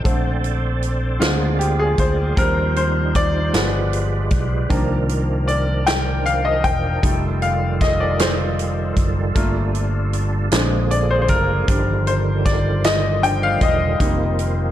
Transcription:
0.04 fingered electric bass A#1, grand piano D3 A3 C4, tonewheel organ C4 A4 C5 D5, kick, closed hi-hat
0.44 closed hi-hat
0.82 closed hi-hat
1.19 fingered electric bass D2, grand piano D3 G#3 C4 F4, tonewheel organ A#3 F4 G#4, snare, clap, closed hi-hat
1.59 grand piano G4, closed hi-hat
1.79 grand piano G#4
1.98 fingered electric bass D2, grand piano C5, kick, closed hi-hat
2.37 fingered electric bass D#2, grand piano F3 G3 C4 A#4, tonewheel organ G3 D#4 C5, kick, closed hi-hat
2.76 grand piano C5, closed hi-hat
3.15 grand piano D5, kick, closed hi-hat
3.53 fingered electric bass G1, grand piano F3 G#3 B3, tonewheel organ G#3 G4 B4, snare, clap, closed hi-hat
3.93 closed hi-hat
4.31 fingered electric bass B1, kick, closed hi-hat
4.69 fingered electric bass C2, grand piano D#3 F3 A#3 D4, tonewheel organ D#3 F3 D4 A#4, kick, closed hi-hat
5.09 closed hi-hat
5.48 grand piano D5, closed hi-hat
5.87 grand piano G5, snare, clap, closed hi-hat
6.26 grand piano F5, closed hi-hat
6.45 grand piano D#5
6.64 fingered electric bass E1, grand piano G5, kick, closed hi-hat
7.02 fingered electric bass F1, grand piano G3 A3 D#4, tonewheel organ G3 F4 A4, kick, closed hi-hat
7.42 grand piano F5, closed hi-hat
7.81 grand piano D#5, kick, snare, closed hi-hat
8.00 grand piano D5
8.19 grand piano C5, snare, clap, closed hi-hat
8.59 closed hi-hat
8.96 fingered electric bass F#1, kick, closed hi-hat
9.35 fingered electric bass G1, grand piano A3 A#3 F4, tonewheel organ D4, kick, closed hi-hat
9.75 closed hi-hat
10.13 closed hi-hat
10.52 fingered electric bass A#1, tonewheel organ D3 F3 A#3 G#4, grand piano G#3 C4 D4, snare, clap, closed hi-hat
10.91 grand piano D5, closed hi-hat
11.11 grand piano C5
11.22 grand piano C5
11.28 fingered electric bass F#1, grand piano A#4, kick, closed hi-hat
11.68 fingered electric bass G1, tonewheel organ D#3 G3 F4, grand piano F3 G3 D4, kick, closed hi-hat
12.07 grand piano C5, closed hi-hat
12.45 grand piano D5, kick, snare, closed hi-hat
12.84 grand piano D#5, snare, clap, closed hi-hat
13.22 grand piano F3 G3 D4 G5, closed hi-hat
13.43 grand piano F5
13.61 fingered electric bass E1, grand piano D#5, kick, closed hi-hat
13.99 fingered electric bass F1, tonewheel organ D#3 A#3 C4 F4, grand piano G3 A#3 D#4, kick, closed hi-hat
14.39 closed hi-hat

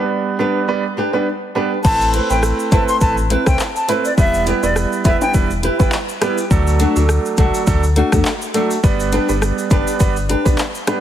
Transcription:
Already playing: grand piano G3 B3 D4 B4
0.39 grand piano G3 B3 D4 B4, nylon-string guitar D4 G4 B4
0.68 grand piano G3 B3 D4 B4
0.97 nylon-string guitar D4 G4 B4
1.13 grand piano G3 B3 D4 B4, nylon-string guitar D4 G4 B4
1.55 grand piano G3 B3 D4 B4, nylon-string guitar D4 G4 B4
1.84 sub bass A1, grand piano A3 C4 E4 B4, flute A5, kick, crash, shaker
2.01 shaker
2.13 nylon-string guitar C4 E4 B4, closed hi-hat, shaker
2.30 sub bass A1, grand piano A3 C4 E4 B4, flute G5, shaker
2.43 cross-stick, shaker
2.59 shaker
2.71 sub bass G1, grand piano A3 C4 E4 B4, nylon-string guitar C4 E4 B4, flute A5, kick, closed hi-hat, shaker
2.88 flute C6, shaker
3.01 sub bass A1, grand piano A3 C4 E4 B4, flute A5, kick, shaker
3.17 shaker
3.30 nylon-string guitar C4 E4 B4, closed hi-hat, shaker
3.46 sub bass C2, grand piano A3 C4 E4 B4, nylon-string guitar C4 E4 B4, flute G5, kick, cross-stick, shaker
3.59 clap, shaker
3.76 flute A5, shaker
3.88 grand piano A3 C4 E4 B4, nylon-string guitar C4 E4 B4, closed hi-hat, shaker
4.05 flute D5, shaker
4.17 sub bass E1, grand piano G3 B3 E4 B4, flute E5, kick, shaker
4.34 shaker
4.46 nylon-string guitar E4 G4 B4, closed hi-hat, shaker
4.63 sub bass E1, grand piano G3 B3 E4 B4, flute D5, shaker
4.76 cross-stick, shaker
4.92 shaker
5.04 sub bass E1, grand piano G3 B3 E4 B4, nylon-string guitar E4 G4 B4, flute E5, kick, closed hi-hat, shaker
5.21 flute G5, high timbale, shaker
5.34 sub bass E1, grand piano G3 B3 E4 B4, kick, shaker
5.50 shaker
5.63 nylon-string guitar E4 G4 B4, closed hi-hat, shaker
5.79 sub bass G1, grand piano G3 B3 E4 B4, nylon-string guitar E4 G4 B4, kick, shaker
5.92 clap, shaker
6.09 shaker
6.21 grand piano G3 B3 E4 B4, nylon-string guitar E4 G4 B4, cross-stick, closed hi-hat, shaker
6.38 shaker
6.51 sub bass D2, grand piano F#3 A3 D4 A4, kick, shaker
6.67 shaker
6.79 nylon-string guitar A3 D4 F#4, closed hi-hat, shaker
6.96 sub bass D2, grand piano F#3 A3 D4 A4, shaker
7.09 cross-stick, shaker
7.25 shaker
7.37 sub bass C2, grand piano F#3 A3 D4 A4, nylon-string guitar A3 D4 F#4, kick, closed hi-hat, shaker
7.54 shaker
7.67 sub bass D2, grand piano F#3 A3 D4 A4, kick, shaker
7.83 shaker
7.96 nylon-string guitar A3 D4 F#4, closed hi-hat, shaker
8.12 sub bass E2, grand piano F#3 A3 D4 A4, nylon-string guitar A3 D4 F#4, kick, cross-stick, shaker
8.25 clap, shaker
8.42 shaker
8.54 grand piano F#3 A3 D4 A4, nylon-string guitar A3 D4 F#4, closed hi-hat, shaker
8.71 shaker
8.83 sub bass G1, grand piano G3 B3 D4 B4, kick, shaker
9.00 shaker
9.12 nylon-string guitar D4 G4 B4, closed hi-hat, shaker
9.29 sub bass G1, grand piano G3 B3 D4 B4, shaker
9.42 cross-stick, shaker
9.58 shaker
9.70 sub bass F#1, grand piano G3 B3 D4 B4, nylon-string guitar D4 G4 B4, kick, closed hi-hat, shaker
9.87 shaker
10.00 sub bass G1, grand piano G3 B3 D4 B4, kick, shaker
10.16 shaker
10.29 nylon-string guitar D4 G4 B4, closed hi-hat, shaker
10.45 sub bass B1, grand piano G3 B3 D4 B4, nylon-string guitar D4 G4 B4, kick, shaker
10.58 clap, shaker
10.75 shaker
10.87 grand piano G3 B3 D4 B4, nylon-string guitar D4 G4 B4, cross-stick, closed hi-hat, high timbale, shaker

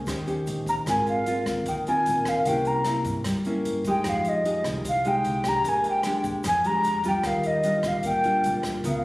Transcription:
0.07 upright bass D#2, nylon-string guitar D#3 C#4 G4 C5, kick, cross-stick, closed hi-hat, shaker
0.27 nylon-string guitar C#4 G4 C5, closed hi-hat, shaker
0.47 upright bass A#1, closed hi-hat, shaker
0.66 flute A#5, kick, closed hi-hat, shaker
0.86 upright bass G#1, nylon-string guitar G#3 C4 F4 A#4, flute G#5, kick, cross-stick, closed hi-hat, shaker
1.07 flute F5, closed hi-hat, shaker
1.26 nylon-string guitar C4 F4 A#4, closed hi-hat, shaker
1.46 upright bass D#2, kick, cross-stick, closed hi-hat, shaker
1.66 upright bass D#2, nylon-string guitar D#3, flute G5, kick, closed hi-hat, shaker
1.87 nylon-string guitar C4 F4 A#4, flute G#5, closed hi-hat, shaker
2.06 upright bass A#1, closed hi-hat, shaker
2.25 flute F5, kick, cross-stick, closed hi-hat, shaker
2.45 upright bass C2, nylon-string guitar C3 A#3 C#4 E4, flute G5, kick, closed hi-hat, shaker
2.65 flute A#5, closed hi-hat, shaker
2.84 nylon-string guitar A#3 C#4 E4, cross-stick, closed hi-hat, shaker
3.04 upright bass G2, kick, closed hi-hat, shaker
3.24 upright bass G2, nylon-string guitar G3, kick, cross-stick, closed hi-hat, shaker
3.45 nylon-string guitar A#3 C#4 E4, closed hi-hat, shaker
3.65 upright bass G2, closed hi-hat
3.84 nylon-string guitar G#3 D#4 G4, kick, closed hi-hat, shaker
3.89 flute G5
4.04 upright bass F2, nylon-string guitar F3, kick, cross-stick, closed hi-hat, shaker
4.09 flute F5
4.25 flute D#5, closed hi-hat, shaker
4.45 nylon-string guitar G#3 D#4 G4, closed hi-hat
4.64 upright bass C2, kick, cross-stick, closed hi-hat, shaker
4.85 upright bass C2, nylon-string guitar C3, kick, closed hi-hat, shaker
4.89 flute F5
5.05 nylon-string guitar G#3 D#4 G4, flute G5, closed hi-hat, shaker
5.24 upright bass C2, closed hi-hat
5.44 nylon-string guitar G#3 D4 G4, kick, cross-stick, closed hi-hat, shaker
5.48 flute A#5
5.64 upright bass A#1, nylon-string guitar A#2, kick, closed hi-hat, shaker
5.69 flute G#5
5.84 closed hi-hat, shaker
5.89 flute G5
6.03 nylon-string guitar G#3 D4 G4, cross-stick, closed hi-hat
6.24 upright bass F2, kick, closed hi-hat, shaker
6.44 upright bass F2, nylon-string guitar F3, flute G#5, kick, cross-stick, closed hi-hat, shaker
6.64 nylon-string guitar G#3 D4 G4, flute A#5, closed hi-hat, shaker
6.84 upright bass F2, closed hi-hat, shaker
7.04 nylon-string guitar G3 D4 F4, kick, closed hi-hat, shaker
7.08 flute G5
7.23 upright bass D#2, nylon-string guitar D#3, flute F5, kick, cross-stick, closed hi-hat, shaker
7.43 flute D#5, closed hi-hat, shaker
7.63 nylon-string guitar G3 D4 F4, closed hi-hat, shaker
7.83 upright bass A#1, kick, cross-stick, closed hi-hat, shaker
7.88 flute F5
8.03 upright bass A#1, nylon-string guitar A#2, flute G5, kick, closed hi-hat, shaker
8.24 nylon-string guitar G3 D4 F4, closed hi-hat, shaker
8.44 upright bass A#1, closed hi-hat, shaker
8.63 kick, cross-stick, closed hi-hat, shaker
8.84 upright bass C#2, nylon-string guitar C#3 B3 F4 A#4, flute F5, kick, closed hi-hat, shaker

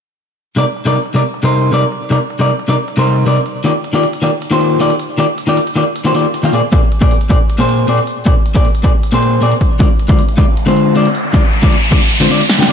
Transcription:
0.56 clean electric guitar C3 G3 D#4 A#4 D5, closed hi-hat
0.76 closed hi-hat
0.85 clean electric guitar C3 G3 D#4 A#4 D5
0.96 closed hi-hat
1.06 closed hi-hat
1.14 clean electric guitar C3 G3 D#4 A#4 D5, closed hi-hat
1.34 closed hi-hat
1.43 clean electric guitar C3 G3 D#4 A#4 C5
1.53 closed hi-hat
1.72 clean electric guitar C3 G3 D#4 A#4 D5, closed hi-hat
1.83 closed hi-hat
1.92 closed hi-hat
2.10 clean electric guitar C3 G3 D#4 A#4 D5, closed hi-hat
2.30 closed hi-hat
2.39 clean electric guitar C3 G3 D#4 A#4 D5
2.50 closed hi-hat
2.59 closed hi-hat
2.68 clean electric guitar C3 G3 D#4 A#4 D5, closed hi-hat
2.88 closed hi-hat
2.97 clean electric guitar C3 G3 D#4 A#4 C5
3.07 closed hi-hat
3.26 clean electric guitar C3 G3 D#4 A#4 D5, closed hi-hat
3.36 closed hi-hat
3.46 closed hi-hat
3.64 clean electric guitar D#3 A#3 F4 G4 D5, closed hi-hat
3.84 closed hi-hat
3.93 clean electric guitar D#3 A#3 F4 G4 D5
4.03 closed hi-hat
4.13 closed hi-hat
4.22 clean electric guitar D#3 A#3 F4 G4 D5, closed hi-hat
4.42 closed hi-hat
4.51 clean electric guitar D#3 A#3 F4 G4 C5
4.61 closed hi-hat
4.79 clean electric guitar D#3 A#3 F4 G4 D5, closed hi-hat
4.90 closed hi-hat
5.00 closed hi-hat
5.18 clean electric guitar D#3 A#3 F4 G4 D5, closed hi-hat
5.38 closed hi-hat
5.47 clean electric guitar D#3 A#3 F4 G4 D5
5.57 closed hi-hat
5.67 closed hi-hat
5.76 clean electric guitar D#3 A#3 F4 G4 D5, closed hi-hat
5.96 closed hi-hat
6.05 clean electric guitar D#3 A#3 F4 G4 C5
6.14 clean electric guitar D#3 A#3 F4 G4 D5, closed hi-hat
6.34 closed hi-hat
6.43 clean electric guitar D#3 A#3 F4 G4 F5, closed hi-hat
6.53 clean electric guitar A#2 A#3 C4 G#4 D5, closed hi-hat
6.72 clean electric guitar A#2 A#3 C4 G#4 D5, kick, closed hi-hat
6.92 closed hi-hat
7.01 clean electric guitar A#2 A#3 C4 G#4 D5, kick
7.11 closed hi-hat
7.21 closed hi-hat
7.29 clean electric guitar A#2 A#3 C4 G#4 D5, kick, closed hi-hat
7.50 closed hi-hat
7.58 clean electric guitar A#2 A#3 C4 G#4 C5
7.69 closed hi-hat
7.87 clean electric guitar A#2 A#3 C4 G#4 D5, closed hi-hat
7.98 closed hi-hat
8.07 closed hi-hat
8.26 clean electric guitar A#2 A#3 C4 G#4 D5, kick, closed hi-hat
8.46 closed hi-hat
8.55 clean electric guitar A#2 A#3 C4 G#4 D5, kick
8.65 closed hi-hat
8.75 closed hi-hat
8.83 clean electric guitar A#2 A#3 C4 G#4 D5, kick, closed hi-hat
9.03 closed hi-hat
9.12 clean electric guitar A#2 A#3 C4 G#4 C5
9.23 closed hi-hat
9.41 clean electric guitar A#2 A#3 C4 G#4 D5, closed hi-hat
9.52 closed hi-hat
9.61 kick, closed hi-hat
9.79 clean electric guitar D3 G#3 C4 F4 D5, kick, closed hi-hat, riser
10.00 closed hi-hat
10.08 clean electric guitar D3 G#3 C4 F4 D5, kick
10.19 closed hi-hat
10.29 closed hi-hat
10.37 clean electric guitar D3 G#3 C4 F4 D5, kick, closed hi-hat
10.57 closed hi-hat
10.66 clean electric guitar D3 G#3 C4 F4 C5
10.76 closed hi-hat
10.95 clean electric guitar D3 G#3 C4 F4 D5, closed hi-hat
11.06 closed hi-hat
11.15 closed hi-hat
11.33 clean electric guitar D3 G#3 C4 F4 D5, kick, closed hi-hat
11.53 closed hi-hat
11.62 clean electric guitar D3 G#3 C4 F4 D5, kick
11.73 closed hi-hat
11.82 closed hi-hat
11.91 clean electric guitar D3 G#3 C4 F4 D5, kick, closed hi-hat
12.11 closed hi-hat
12.20 clean electric guitar D3 G#3 C4 F4 C5
12.29 clean electric guitar D3 G#3 C4 F4 D5, closed hi-hat
12.50 snare, closed hi-hat
12.59 clean electric guitar D3 G#3 C4 F4 G5, snare, closed hi-hat
12.68 clean electric guitar D3 G#3 C4 F4, closed hi-hat

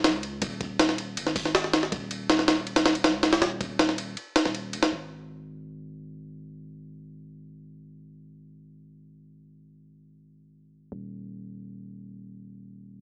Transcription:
0.04 808-style bass C#2, snare, ride
0.23 ride
0.42 808-style bass D#1, kick, ride
0.61 kick, ride
0.79 snare, ride
0.89 snare
0.98 ride
1.17 808-style bass G#1, ride
1.27 snare
1.36 kick, open hi-hat
1.45 snare
1.55 snare, ride
1.64 snare
1.73 snare, ride
1.83 snare
1.92 808-style bass D#1, kick, ride
2.11 ride
2.30 snare, ride
2.39 snare
2.48 snare, ride
2.67 ride
2.76 snare, ride
2.86 snare, ride
2.95 ride
3.04 808-style bass C#2, snare, ride
3.23 snare, ride
3.33 snare, ride
3.42 808-style bass D#1, snare, ride
3.61 kick, ride
3.79 snare, ride
3.89 snare
3.98 ride
4.17 ride
4.36 snare, ride
4.45 808-style bass D#1, snare
4.55 ride
4.73 808-style bass F1, ride
4.83 snare, ride
4.92 808-style bass G#1
10.92 808-style bass D#1

